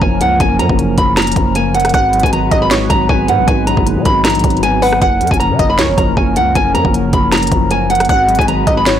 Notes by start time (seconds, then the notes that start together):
Already playing: F#2 C#3 F3 C#4 A#4
0.02 F#1 A#3 G#5, kick
0.21 C#2 A#3 F#5, closed hi-hat
0.40 F#1 F#2 G#5, kick, closed hi-hat
0.59 F#2 F3 A#5, closed hi-hat
0.69 F#1, kick
0.79 C#3, closed hi-hat
0.98 F#1 B5, kick, closed hi-hat
1.17 F#2 A#5, snare, closed hi-hat
1.22 closed hi-hat
1.27 closed hi-hat
1.32 closed hi-hat
1.36 F#1 F3, kick, closed hi-hat
1.55 A#3 G#5, closed hi-hat
1.75 A#3 F#5, closed hi-hat, open hi-hat
1.80 closed hi-hat
1.85 cross-stick, closed hi-hat
1.89 closed hi-hat
1.94 G#1 G#2 G#3 F#4 B4 F#5, kick, closed hi-hat
2.13 F#3, closed hi-hat
2.20 G#1 G#5, kick, closed hi-hat
2.26 closed hi-hat
2.32 D#3 A#5, closed hi-hat
2.51 G#1 D#5, kick, closed hi-hat
2.62 B5
2.71 G#2 C#5, snare, closed hi-hat
2.90 G#1 F#3 A#5, kick, closed hi-hat
3.09 G#1 B3 G#5, kick
3.28 G#2 B3 F#5, closed hi-hat
3.39 G#1
3.47 G#1 G#2 G#5, kick, closed hi-hat
3.67 A#1 F#3 A#5, closed hi-hat
3.77 F#1, kick
3.86 D#3, closed hi-hat
3.96 B2
4.05 G#1 B5, kick, closed hi-hat
4.24 A#1 G#2 A#5, snare, closed hi-hat
4.30 closed hi-hat
4.35 closed hi-hat
4.39 closed hi-hat
4.44 G#1 F#3, kick, closed hi-hat
4.50 closed hi-hat
4.57 closed hi-hat
4.63 B3 G#5, closed hi-hat
4.82 B3 B4 F#5, open hi-hat
4.93 cross-stick
5.01 F#1 F#2 F3 C#4 A#4 F#5, kick, closed hi-hat
5.21 F#2 F3, closed hi-hat
5.27 F#1 G#5, kick, closed hi-hat
5.34 closed hi-hat
5.40 C#3 A#5, closed hi-hat
5.50 C#3
5.59 F#1 D#5, kick, closed hi-hat
5.70 B5
5.79 C#2 F#2 C#5, snare, closed hi-hat
5.89 F#1
5.97 F#1 F3 A#5, kick, closed hi-hat
6.17 F#1 A#3 G#5, kick
6.36 C#2 A#3 F#5, closed hi-hat
6.55 F#1 F#2 G#5, kick, closed hi-hat
6.74 F#2 F3 A#5, closed hi-hat
6.85 F#1, kick
6.94 C#3, closed hi-hat
7.13 F#1 B5, kick, closed hi-hat
7.32 F#2 A#5, snare, closed hi-hat
7.37 closed hi-hat
7.43 closed hi-hat
7.47 closed hi-hat
7.52 F#1 F3, kick, closed hi-hat
7.71 A#3 G#5, closed hi-hat
7.90 A#3 F#5, closed hi-hat, open hi-hat
7.95 closed hi-hat
8.00 cross-stick, closed hi-hat
8.05 closed hi-hat
8.09 G#1 G#2 G#3 F#4 B4 F#5, kick, closed hi-hat
8.29 F#3, closed hi-hat
8.35 G#1 G#5, kick, closed hi-hat
8.41 closed hi-hat
8.48 D#3 A#5, closed hi-hat
8.67 G#1 D#5, kick, closed hi-hat
8.77 B5
8.86 G#2 C#5, snare, closed hi-hat